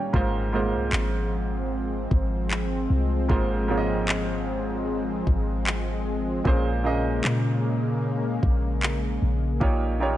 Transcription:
0.00 0.11 A#2 medium
0.00 0.11 D#3 medium
0.00 0.11 G3 medium
0.00 0.11 C#4 medium
0.00 0.32 C#5 medium
0.00 0.16 D#5 medium
0.00 0.16 F5 medium
0.00 0.32 G5 medium
0.00 0.16 G#5 medium
0.00 0.16 A#5 medium
0.13 0.74 G#1 loud
0.13 0.39 G#2 medium
0.13 6.41 F3 medium
0.13 9.57 G#3 medium
0.13 0.40 G#3 medium
0.13 0.40 A#3 medium
0.13 6.41 C4 medium
0.13 0.41 F4 medium
0.13 0.41 C5 medium
0.13 kick loud
0.52 1.57 G#2 medium
0.52 1.58 G#3 medium
0.52 1.58 A#3 medium
0.52 1.58 F4 medium
0.52 1.59 C5 medium
0.73 0.92 C2 medium
0.93 2.07 G#1 loud
0.93 clap loud
2.11 2.87 G#1 loud
2.11 kick medium
2.51 clap loud
2.90 3.28 C2 loud
3.28 5.23 G#1 loud
3.28 3.55 G#2 medium
3.28 3.55 G#3 medium
3.28 3.56 A#3 medium
3.28 3.56 F4 medium
3.28 3.57 C5 medium
3.28 kick loud
3.68 4.73 G#2 medium
3.68 4.73 G#3 medium
3.68 4.74 A#3 medium
3.68 4.74 F4 medium
3.68 3.77 C#5 medium
3.77 4.78 D#5 medium
4.09 clap loud
5.27 6.41 G#1 loud
5.27 kick medium
5.67 clap loud
6.44 7.21 A#1 loud
6.44 6.71 A#2 medium
6.44 9.58 C#3 medium
6.44 6.71 A#3 medium
6.44 9.58 A#3 medium
6.44 6.72 C#4 medium
6.44 6.72 G#4 medium
6.44 6.72 C5 loud
6.44 kick loud
6.84 7.89 A#2 medium
6.84 7.89 A#3 medium
6.84 7.89 C#4 medium
6.84 7.90 G#4 medium
6.84 7.90 D#5 medium
7.24 8.39 A#2 loud
7.24 clap loud
8.43 9.19 A#1 loud
8.43 kick medium
8.83 clap loud
9.22 9.60 A#1 medium
9.60 10.17 A#1 loud
9.60 9.87 A#2 medium
9.60 10.17 D#3 medium
9.60 10.17 G3 medium
9.60 9.87 A#3 medium
9.60 10.17 C#4 medium
9.60 9.87 D#4 medium
9.60 9.88 F4 medium
9.60 9.88 G4 medium
9.60 9.88 C#5 medium
9.60 kick loud
10.00 10.17 A#2 medium
10.00 10.17 A#3 medium
10.00 10.17 D#4 medium
10.00 10.17 F4 medium
10.00 10.17 G4 medium
10.00 10.17 C#5 medium

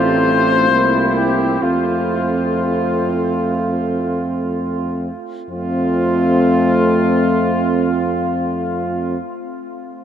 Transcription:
0.00 0.70 A1 medium
0.00 0.70 A3 medium
0.00 0.68 C4 medium
0.00 0.70 F4 medium
0.00 1.12 C5 loud
0.68 1.61 C2 medium
0.68 1.61 A#3 medium
0.68 1.60 C4 medium
0.68 1.65 E4 medium
1.15 1.64 G4 medium
1.61 5.10 F2 medium
1.61 5.10 A3 medium
1.61 5.09 C4 medium
1.61 4.51 F4 medium
1.61 5.14 F4 medium
5.49 9.17 F2 medium
5.49 9.16 A3 medium
5.49 9.17 C4 medium
5.49 9.17 F4 medium
5.49 9.18 F4 medium

